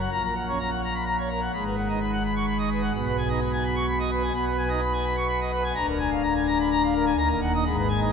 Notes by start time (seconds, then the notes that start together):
0.00 F#5
0.11 A#1 A#2 A#5
0.24 A#4
0.36 F#5
0.48 C#4 C#5
0.60 A#5
0.71 F#5
0.84 A#5
0.95 B5
1.06 A#5
1.19 C#5
1.30 A#4
1.42 F#5
1.54 G#1 G#2 B5
1.65 B4
1.78 F#5
1.89 D#4 D#5
2.01 B5
2.13 F#5
2.24 B5
2.36 C#6
2.47 B5
2.59 D#5
2.71 B4
2.83 F#5
2.94 B1 B2 B5
3.06 B4
3.18 G#5
3.29 D#4 D#5
3.41 B5
3.53 G#5
3.65 B5
3.76 C#6
3.88 B5
4.00 D#5
4.12 B4
4.22 G#5
4.34 B1 B2 B5
4.46 B4
4.58 G#5
4.69 D#4 D#5
4.82 B5
4.93 G#5
5.05 B5
5.17 C#6
5.29 B5
5.41 D#5
5.52 B4
5.64 G#5
5.75 D1 D2 A#5
5.87 A#4
6.00 G#5
6.11 F5
6.23 A#5
6.36 G#5
6.48 A#5
6.60 B5
6.72 A#5
6.84 F5
6.94 A#4
7.07 G#5
7.17 D#1 D#2 A#5
7.30 A#4
7.42 F#5
7.54 D#4 D#5
7.65 G#1 G#2 B5
7.77 B4
7.89 G#5
8.00 D#4 D#5